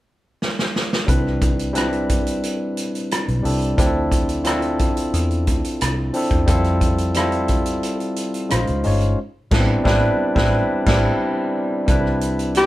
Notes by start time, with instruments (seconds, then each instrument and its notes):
0.42 snare
0.59 snare
0.76 snare
0.93 snare
1.06 fingered electric bass C2, tine electric piano G3 C4 D4 E4 B4, kick, closed hi-hat
1.27 cross-stick
1.42 kick, closed hi-hat
1.59 closed hi-hat
1.73 tine electric piano G3 C4 D4 E4 B4, closed hi-hat
1.78 cross-stick
1.93 closed hi-hat
2.09 kick, closed hi-hat
2.27 closed hi-hat
2.43 closed hi-hat
2.77 closed hi-hat
2.95 closed hi-hat
3.11 cross-stick, closed hi-hat
3.28 fingered electric bass B1, closed hi-hat
3.43 fingered electric bass C2, tine electric piano G3 C4 D4 E4 A4, open hi-hat
3.62 closed hi-hat
3.77 fingered electric bass D2, tine electric piano F3 C4 D4 E4 G4, kick, closed hi-hat
3.86 tine electric piano A4
4.12 kick, closed hi-hat
4.29 closed hi-hat
4.44 tine electric piano C4 D4 E4 F4 A4, cross-stick, closed hi-hat
4.62 closed hi-hat
4.79 kick, closed hi-hat
4.97 closed hi-hat
5.14 fingered electric bass E2, closed hi-hat
5.30 closed hi-hat
5.47 fingered electric bass D2, kick, closed hi-hat
5.64 closed hi-hat
5.81 fingered electric bass C2, cross-stick, closed hi-hat
6.13 tine electric piano F3 C4 D4 E4 A4, open hi-hat
6.31 fingered electric bass E2, kick, closed hi-hat
6.46 fingered electric bass F2, tine electric piano G3 C4 E4 F4 A4, kick, closed hi-hat
6.64 cross-stick, closed hi-hat
6.81 kick, closed hi-hat
6.98 closed hi-hat
7.14 tine electric piano G3 C4 E4 F4 A4, cross-stick, closed hi-hat
7.32 closed hi-hat
7.48 kick, closed hi-hat
7.66 closed hi-hat
7.83 closed hi-hat
8.00 closed hi-hat
8.16 closed hi-hat
8.34 closed hi-hat
8.49 fingered electric bass A#1, tine electric piano G#3 C#4 D#4 F4 C5, cross-stick, closed hi-hat
8.67 fingered electric bass C#2, closed hi-hat
8.84 fingered electric bass G1, tine electric piano G#3 C#4 D#4 F4 C#5, open hi-hat
9.00 closed hi-hat
9.51 fingered electric bass A1, tine electric piano G3 B3 D4 E4 B4, kick, snare, crash
9.58 tine electric piano C4
9.84 fingered electric bass A1, tine electric piano G3 C4 D4 E4 B4, kick, snare
10.35 fingered electric bass A1, tine electric piano G3 C4 D4 E4 B4, kick, snare
10.86 fingered electric bass A1, tine electric piano G3 C4 D4 E4 G4, kick, snare, crash
11.87 fingered electric bass C2, tine electric piano G3 C4 D4 E4 B4, kick, closed hi-hat
12.06 cross-stick
12.21 closed hi-hat
12.39 closed hi-hat
12.55 alto saxophone G4, cross-stick, closed hi-hat